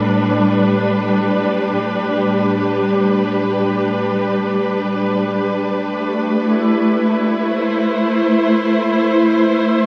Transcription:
Already playing: cello section A2, string section G3 D4 G4 A4 B4
5.98 string section A3
6.41 string section E4
7.48 string section C5

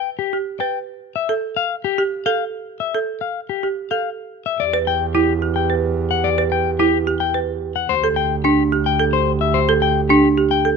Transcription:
0.19 clean electric guitar G4
0.33 marimba G4
0.60 marimba B4, clean electric guitar G5
1.16 clean electric guitar E5
1.29 marimba A4
1.56 clean electric guitar F5
1.84 clean electric guitar G4
1.98 marimba G4
2.26 marimba A4, clean electric guitar F5
2.80 clean electric guitar E5
2.95 marimba A4
3.21 clean electric guitar F5
3.49 clean electric guitar G4
3.63 marimba G4
3.91 marimba A4, clean electric guitar F5
4.46 clean electric guitar E5
4.59 double bass E2, french horn G4, clean electric guitar D5
4.73 marimba B4
4.87 clean electric guitar G5
5.15 marimba E4, clean electric guitar G4
5.42 marimba G4
5.56 clean electric guitar G5
5.70 marimba B4
6.11 clean electric guitar F#5
6.24 clean electric guitar D5
6.38 marimba B4
6.52 clean electric guitar G5
6.79 marimba E4, clean electric guitar G4
7.07 marimba G4
7.20 clean electric guitar G5
7.34 marimba B4
7.76 clean electric guitar F#5
7.89 double bass D2, french horn G4, clean electric guitar C5
8.04 marimba A4
8.16 clean electric guitar G5
8.44 marimba D4, clean electric guitar G4
8.72 marimba G4
8.86 clean electric guitar G5
8.99 marimba A4
9.13 clean electric guitar C5
9.41 clean electric guitar E5
9.54 clean electric guitar C5
9.69 marimba A4
9.82 clean electric guitar G5
10.09 marimba D4, clean electric guitar G4
10.38 marimba G4
10.51 clean electric guitar G5
10.65 marimba A4

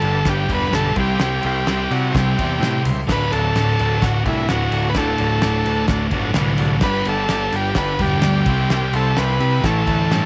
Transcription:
Already playing: distorted electric guitar G2 D3 G3, transistor combo organ A4
0.00 picked electric bass G1, transistor combo organ D4 G4 B4, ride
0.25 picked electric bass G1, transistor combo organ D4 G4 B4, kick, snare, ride
0.30 transistor combo organ G4
0.48 picked electric bass E1, distorted electric guitar D3 G3, transistor combo organ D4 G4 B4, kick, ride
0.53 distorted electric guitar G2, transistor combo organ B4
0.70 picked electric bass B1, distorted electric guitar G2 D3, transistor combo organ D4 G4 B4, snare, ride
0.75 distorted electric guitar G3, transistor combo organ A4
0.93 picked electric bass C2, distorted electric guitar C3 G3, transistor combo organ E4 G4 C5, kick, ride
0.99 distorted electric guitar C4, transistor combo organ G4
1.19 picked electric bass C2, transistor combo organ G4, snare, ride
1.40 transistor combo organ E4 G4 C5, ride
1.45 picked electric bass C2, transistor combo organ G4
1.64 picked electric bass C2, transistor combo organ E4 G4 C5, snare, ride
1.90 picked electric bass C3, transistor combo organ E4 F#4 G4 D5, ride
2.10 distorted electric guitar C3, transistor combo organ E4 G4 C5
2.15 picked electric bass C2, distorted electric guitar G3 C4, transistor combo organ G4, kick, snare, ride
2.35 picked electric bass E2, distorted electric guitar C4, transistor combo organ E4 G4 C5, kick, ride
2.41 distorted electric guitar C3 G3
2.58 picked electric bass A2, transistor combo organ E4 G4 C5
2.63 snare, ride
2.82 picked electric bass C#2, transistor combo organ E4 G4 C5, ride
3.07 picked electric bass D1, distorted electric guitar D2 A2, transistor combo organ D4 F#4 A4, kick, snare, crash
3.12 distorted electric guitar D3, transistor combo organ B4
3.32 picked electric bass D1, transistor combo organ D4 F#4 A4, ride
3.55 picked electric bass D1, transistor combo organ D4 F#4 A4, snare, ride
3.79 picked electric bass D1, transistor combo organ D4 F#4 A4, ride
4.01 picked electric bass D1, transistor combo organ D4 F#4 A4, kick, snare, ride
4.24 picked electric bass C2, distorted electric guitar A2 D3, transistor combo organ D4 E4 F#4 A4, kick, ride
4.30 distorted electric guitar D2
4.46 picked electric bass D1, distorted electric guitar D2 A2, transistor combo organ D4 F#4 B4, snare, ride
4.52 distorted electric guitar D3
4.71 picked electric bass D1, transistor combo organ D4 F#4 A4, ride
4.89 transistor combo organ B4
4.93 picked electric bass D1, distorted electric guitar D2 A2, transistor combo organ D4 F#4, kick, snare, ride
4.97 distorted electric guitar D3, transistor combo organ A4
5.18 picked electric bass D1, transistor combo organ D4 F#4 A4, ride
5.41 picked electric bass D1, transistor combo organ D4 F#4 A4, snare, ride
5.64 picked electric bass D2, transistor combo organ D4 F#4 A4, ride
5.88 picked electric bass D1, transistor combo organ D4 F#4 A4, kick, snare, ride
6.11 picked electric bass G1, distorted electric guitar A2 D3, transistor combo organ D4, kick, ride
6.15 distorted electric guitar D2, transistor combo organ F#4 A4
6.33 picked electric bass C2, distorted electric guitar D2 A2, transistor combo organ D4 F#4 B4, snare, ride
6.38 distorted electric guitar D3
6.58 picked electric bass C2, transistor combo organ D4 F#4 A4, ride
6.80 picked electric bass G1, distorted electric guitar G2 D3, transistor combo organ D4 G4 B4, kick, snare, ride
6.86 distorted electric guitar G3
7.05 picked electric bass G1, transistor combo organ D4 G4 A4 B4, ride
7.26 picked electric bass G1, transistor combo organ D4 G4 D5, snare, ride
7.52 picked electric bass G1, transistor combo organ D4 G4 B4, ride
7.75 picked electric bass G1, transistor combo organ D4 G4 A4 B4, kick, snare, ride
7.98 picked electric bass E1, distorted electric guitar G3, transistor combo organ D4 G4 B4, kick, ride
8.03 distorted electric guitar G2 D3
8.21 picked electric bass D2, distorted electric guitar G2 D3, transistor combo organ D4 G4 D5, snare, ride
8.27 distorted electric guitar G3
8.46 picked electric bass C2, distorted electric guitar C3 G3, transistor combo organ E4 G4 C5, kick, ride
8.51 distorted electric guitar C4
8.70 picked electric bass C2, transistor combo organ G4, snare, ride
8.93 picked electric bass C2, transistor combo organ E4 G4 A4 C5, ride
9.15 picked electric bass C2, transistor combo organ E4 G4 B4 C5, snare, ride
9.39 picked electric bass C3, transistor combo organ E4 G4 B4, ride
9.62 picked electric bass A1, distorted electric guitar A2 E3, transistor combo organ E4 A4, kick, snare, ride
9.67 distorted electric guitar A3, transistor combo organ C#5
9.86 picked electric bass D2, transistor combo organ E4 A4 C#5, kick, ride
10.09 picked electric bass G2, transistor combo organ E4 A4 C#5, snare, ride

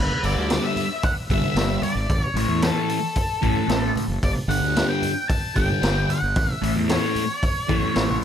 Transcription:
Already playing: lead electric guitar B4
0.11 high conga
0.23 fingered electric bass G1, distorted electric guitar G2 D3 G3, lead electric guitar D5, open hi-hat
0.36 fingered electric bass D2
0.50 distorted electric guitar G2 D3 G3, snare, open hi-hat
0.65 lead electric guitar E5
0.76 open hi-hat, low conga
1.03 lead electric guitar F#5, kick, open hi-hat
1.29 fingered electric bass G1, distorted electric guitar G2 D3 G3, lead electric guitar E5, kick, open hi-hat
1.42 high conga, low conga
1.55 fingered electric bass G1, distorted electric guitar G2 D3 G3, snare, open hi-hat
1.82 lead electric guitar D5, open hi-hat, high conga, low conga
1.95 fingered electric bass G#1
2.10 fingered electric bass A1, kick, open hi-hat
2.23 lead electric guitar C#5, high conga
2.34 fingered electric bass A1, distorted electric guitar A2 E3 A3, lead electric guitar C#5, open hi-hat
2.48 fingered electric bass E2
2.62 distorted electric guitar A2 E3 A3, lead electric guitar A4, snare, open hi-hat
2.89 open hi-hat
3.16 kick, open hi-hat
3.42 fingered electric bass A1, distorted electric guitar A2 E3 A3, kick, open hi-hat
3.56 high conga, low conga
3.68 fingered electric bass A1, distorted electric guitar A2 E3 A3, snare, open hi-hat
3.96 open hi-hat, high conga, low conga
4.08 fingered electric bass F#1
4.23 fingered electric bass G1, lead electric guitar D5, kick, open hi-hat
4.36 high conga
4.48 fingered electric bass G1, distorted electric guitar G2 D3 G3, lead electric guitar F#5, open hi-hat
4.60 fingered electric bass D2
4.76 distorted electric guitar G2 D3 G3, snare, open hi-hat
4.89 lead electric guitar G5
5.02 open hi-hat, low conga
5.28 lead electric guitar A5, kick, open hi-hat
5.56 fingered electric bass G1, distorted electric guitar G2 D3 G3, lead electric guitar G5, kick, open hi-hat
5.69 high conga, low conga
5.81 fingered electric bass G1, distorted electric guitar G2 D3 G3, snare, open hi-hat
6.09 lead electric guitar F#5, open hi-hat, low conga
6.22 fingered electric bass G1
6.36 fingered electric bass A1, kick, open hi-hat
6.49 high conga
6.62 fingered electric bass A1, distorted electric guitar A2 E3 A3, lead electric guitar E5, open hi-hat
6.76 fingered electric bass E2
6.88 distorted electric guitar A2 E3 A3, lead electric guitar C#5, snare, open hi-hat
7.15 open hi-hat, low conga
7.43 kick, open hi-hat
7.68 fingered electric bass A1, distorted electric guitar A2 E3 A3, kick, open hi-hat
7.82 high conga, low conga
7.95 fingered electric bass A1, distorted electric guitar A2 E3 A3, snare, open hi-hat
8.09 high conga

